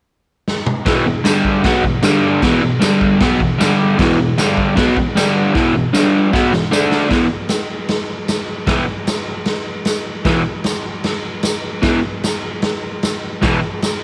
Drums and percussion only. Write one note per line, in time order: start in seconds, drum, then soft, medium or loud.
0.48 snare medium
0.66 mid tom medium
0.86 kick loud
0.86 snare loud
0.86 crash medium
1.25 snare loud
1.25 tambourine medium
1.25 crash medium
1.45 kick medium
1.64 kick loud
1.64 snare loud
1.64 crash medium
1.84 kick medium
2.03 snare loud
2.03 tambourine loud
2.03 crash medium
2.42 kick loud
2.42 snare loud
2.42 crash medium
2.81 snare loud
2.81 tambourine loud
2.81 crash medium
3.01 kick medium
3.20 kick loud
3.20 snare loud
3.20 crash medium
3.40 kick medium
3.61 snare loud
3.61 tambourine loud
3.61 crash medium
3.99 kick loud
3.99 snare loud
3.99 crash medium
4.38 snare loud
4.38 tambourine loud
4.38 crash medium
4.57 kick medium
4.77 kick loud
4.77 snare loud
4.77 crash medium
4.97 kick medium
5.17 snare loud
5.17 tambourine loud
5.17 crash medium
5.55 kick loud
5.55 snare medium
5.95 snare medium
5.95 tambourine loud
6.33 kick loud
6.33 snare medium
6.53 snare medium
6.72 snare loud
6.72 tambourine loud
6.92 snare medium
7.11 kick loud
7.11 snare medium
7.11 crash medium
7.49 snare loud
7.49 tambourine medium
7.49 crash medium
7.88 snare loud
7.88 crash medium
8.28 snare loud
8.28 tambourine medium
8.28 crash medium
8.67 kick loud
8.67 snare loud
8.67 crash medium
9.07 snare loud
9.07 tambourine medium
9.07 crash medium
9.46 snare medium
9.46 crash medium
9.85 snare loud
9.85 tambourine medium
9.85 crash medium
10.25 kick loud
10.25 snare loud
10.25 crash medium
10.64 snare loud
10.64 tambourine medium
10.64 crash medium
11.04 snare loud
11.04 crash medium
11.43 snare loud
11.43 tambourine loud
11.43 crash medium
11.83 kick loud
11.83 snare loud
11.83 crash medium
12.24 snare loud
12.24 tambourine loud
12.24 crash medium
12.62 snare loud
12.62 crash medium
13.03 snare loud
13.03 tambourine loud
13.03 crash medium
13.42 kick loud
13.42 snare loud
13.42 crash medium
13.82 snare loud
13.82 tambourine loud
13.82 crash medium